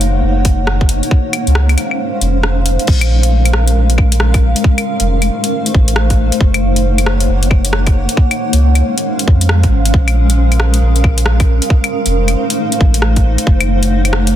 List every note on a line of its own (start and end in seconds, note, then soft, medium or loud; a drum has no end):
0.00 0.22 F#1 medium
0.00 1.09 A#3 medium
0.00 1.07 D#4 medium
0.00 1.09 C#5 medium
0.00 1.09 F#5 medium
0.00 closed hi-hat medium
0.23 1.01 F#1 medium
0.45 kick loud
0.45 closed hi-hat medium
0.67 cross-stick medium
0.81 kick loud
0.89 closed hi-hat medium
1.03 closed hi-hat soft
1.11 2.86 C5 medium
1.11 kick loud
1.33 closed hi-hat medium
1.33 claves medium
1.47 1.76 C#2 medium
1.47 closed hi-hat soft
1.55 cross-stick loud
1.69 closed hi-hat soft
1.69 claves medium
1.78 closed hi-hat medium
1.78 claves soft
1.91 claves soft
2.21 2.78 F1 loud
2.21 closed hi-hat medium
2.43 cross-stick medium
2.66 closed hi-hat medium
2.79 closed hi-hat soft
2.87 3.75 A#1 medium
2.87 4.62 G#3 medium
2.87 4.62 C#4 medium
2.87 4.62 A#4 medium
2.87 6.37 F5 medium
2.87 kick loud
2.87 crash loud
3.01 closed hi-hat soft
3.01 claves medium
3.23 closed hi-hat medium
3.45 closed hi-hat soft
3.45 claves soft
3.53 cross-stick loud
3.68 closed hi-hat medium
3.76 4.54 A#1 medium
3.90 closed hi-hat soft
3.98 kick loud
3.98 claves soft
4.12 closed hi-hat medium
4.20 cross-stick loud
4.34 kick loud
4.34 closed hi-hat soft
4.34 claves soft
4.56 closed hi-hat medium
4.64 6.39 A3 medium
4.64 6.39 D#4 medium
4.64 6.39 C5 medium
4.64 kick loud
4.78 closed hi-hat soft
4.78 claves medium
5.00 5.29 F1 medium
5.00 closed hi-hat medium
5.22 closed hi-hat soft
5.22 claves soft
5.44 closed hi-hat medium
5.66 closed hi-hat soft
5.74 6.31 A1 loud
5.74 kick loud
5.88 closed hi-hat medium
5.96 cross-stick loud
6.10 kick medium
6.10 closed hi-hat soft
6.32 closed hi-hat medium
6.41 7.28 F#1 medium
6.41 8.16 A#3 medium
6.41 8.15 D#4 medium
6.41 8.15 C#5 medium
6.41 8.16 F#5 medium
6.41 kick loud
6.54 closed hi-hat soft
6.54 claves medium
6.76 closed hi-hat medium
6.98 closed hi-hat soft
6.98 claves soft
7.06 cross-stick loud
7.20 closed hi-hat medium
7.29 8.07 F#1 medium
7.43 closed hi-hat soft
7.51 kick loud
7.51 claves soft
7.65 closed hi-hat medium
7.73 cross-stick loud
7.87 kick loud
7.87 closed hi-hat soft
7.87 claves soft
8.09 closed hi-hat medium
8.17 11.66 G#3 medium
8.17 11.67 C#4 medium
8.17 9.92 C5 medium
8.17 13.42 F5 medium
8.17 kick loud
8.31 closed hi-hat soft
8.31 claves soft
8.53 8.82 C#2 medium
8.53 closed hi-hat medium
8.75 closed hi-hat soft
8.75 claves soft
8.98 closed hi-hat medium
9.19 closed hi-hat soft
9.28 9.65 F2 loud
9.28 kick loud
9.41 closed hi-hat medium
9.49 cross-stick loud
9.63 9.93 G#1 medium
9.63 kick medium
9.63 closed hi-hat soft
9.85 closed hi-hat medium
9.94 10.81 A#1 medium
9.94 11.68 A#4 medium
9.94 kick loud
10.08 closed hi-hat soft
10.08 claves soft
10.30 closed hi-hat medium
10.52 closed hi-hat soft
10.52 claves soft
10.60 cross-stick loud
10.74 closed hi-hat medium
10.82 11.60 A#1 medium
10.96 closed hi-hat soft
11.04 kick loud
11.04 claves soft
11.18 closed hi-hat medium
11.26 cross-stick loud
11.40 kick loud
11.40 closed hi-hat soft
11.40 claves soft
11.62 closed hi-hat medium
11.70 13.45 A3 medium
11.70 14.36 D#4 medium
11.70 13.45 C5 medium
11.70 kick loud
11.84 closed hi-hat soft
11.84 claves medium
12.06 12.35 F1 medium
12.06 closed hi-hat medium
12.28 closed hi-hat soft
12.28 claves soft
12.50 closed hi-hat medium
12.72 closed hi-hat soft
12.81 13.37 A1 loud
12.81 kick loud
12.94 closed hi-hat medium
13.02 cross-stick medium
13.16 kick medium
13.16 closed hi-hat soft
13.38 closed hi-hat medium
13.46 14.34 F#1 loud
13.46 14.36 A#3 medium
13.46 14.36 C#5 medium
13.46 14.36 F#5 medium
13.46 kick loud
13.61 closed hi-hat soft
13.61 claves medium
13.83 closed hi-hat medium
14.05 closed hi-hat soft
14.05 claves soft
14.13 cross-stick loud
14.27 closed hi-hat medium